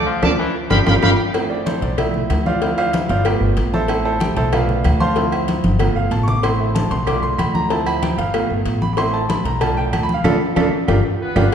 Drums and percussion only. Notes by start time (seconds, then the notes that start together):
0.23 cowbell, high conga, high timbale, claves
0.70 cowbell, high conga, high timbale, claves
0.86 cowbell, high conga, high timbale, claves
1.03 cowbell, high conga, high timbale, claves
1.34 cowbell, high conga, low agogo, claves
1.51 high conga
1.66 cowbell, high conga, low agogo
1.82 cowbell, high conga
1.98 cowbell, high conga, low conga, low agogo, claves
2.14 high conga, low conga
2.30 cowbell, high conga, low timbale, low agogo, claves
2.46 high conga
2.62 cowbell, high conga, low agogo
2.78 high conga, low agogo, claves
2.93 cowbell, high conga, low agogo
3.09 cowbell
3.25 cowbell, high conga, low agogo, claves
3.42 high conga
3.57 cowbell, high conga, low agogo
3.74 high conga
3.88 cowbell, high conga, low agogo, claves
4.06 high conga
4.20 cowbell, high conga, low agogo
4.37 cowbell, high conga
4.53 cowbell, high conga, low conga, low agogo, claves
4.69 high conga, low conga
4.84 cowbell, high conga, low agogo, claves
5.00 high conga
5.16 cowbell, high conga, low agogo
5.32 high conga, low agogo, claves
5.48 cowbell, high conga, low agogo
5.64 cowbell, high conga
5.79 cowbell, low conga, low agogo, claves
6.11 cowbell, low conga, low agogo
6.28 low conga
6.43 cowbell, high conga, low agogo, claves
6.60 high conga
6.76 cowbell, high conga, low agogo
6.91 cowbell, high conga
7.07 cowbell, high conga, low conga, low agogo, claves
7.23 high conga, low conga
7.39 cowbell, high conga, low agogo, claves
7.55 high conga
7.70 cowbell, high conga, low agogo
7.86 high conga, low agogo, claves
8.02 cowbell, high conga, low agogo
8.19 cowbell
8.34 cowbell, high conga, low agogo, claves
8.50 high conga
8.66 cowbell, high conga, low agogo
8.82 high conga
8.97 cowbell, high conga, low agogo, claves
9.14 high conga
9.30 cowbell, high conga, low agogo
9.45 cowbell, high conga
9.61 cowbell, high conga, low conga, low agogo, claves
9.77 high conga
9.93 cowbell, high conga, low agogo, claves
10.09 high conga
10.24 cowbell, high conga, high timbale, claves
10.56 cowbell, high conga, high timbale, claves
10.88 cowbell, high conga, high timbale, claves
11.36 cowbell, high conga, high timbale, claves